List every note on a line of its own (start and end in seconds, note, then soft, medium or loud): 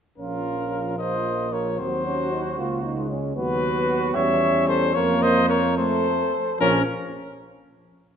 0.18 1.81 A#1 soft
0.18 1.81 F3 soft
0.18 0.95 C#4 soft
0.18 0.95 F4 soft
0.18 0.94 A#4 medium
0.98 1.80 A#3 medium
0.98 1.54 C5 medium
0.98 1.54 D#5 medium
1.53 1.79 A#4 soft
1.53 1.81 C#5 medium
1.78 2.60 D#2 medium
1.78 2.60 F#3 soft
1.78 2.05 C4 soft
1.78 3.08 F#4 medium
1.78 3.10 C5 medium
2.06 2.31 C#4 medium
2.32 2.43 D#4 soft
2.58 3.35 C#2 medium
2.58 2.97 A#3 medium
2.58 2.83 F4 medium
2.83 3.09 D#4 medium
2.97 3.35 G#3 medium
3.10 3.36 C#4 medium
3.36 4.14 D#2 medium
3.36 4.17 F#3 medium
3.36 4.17 B3 medium
3.36 4.16 F#4 medium
3.36 4.11 B4 medium
4.14 4.97 E2 medium
4.14 4.95 G3 medium
4.14 4.95 C#4 medium
4.14 4.67 C#5 medium
4.14 4.69 E5 medium
4.67 4.94 A4 medium
4.67 4.96 C5 medium
4.95 6.32 F2 medium
4.95 5.75 A#3 medium
4.95 5.79 A#3 medium
4.95 5.24 A#4 medium
4.95 5.24 C#5 medium
5.22 5.51 C5 medium
5.22 5.48 D#5 medium
5.49 5.79 A#4 medium
5.49 5.76 C#5 medium
5.77 6.17 A3 medium
5.77 6.33 A3 medium
5.77 6.60 A4 medium
5.77 6.59 C5 medium
6.60 6.83 A#1 medium
6.60 6.83 F3 medium
6.60 6.83 C#4 medium
6.60 6.84 C#4 medium
6.60 6.83 A#4 medium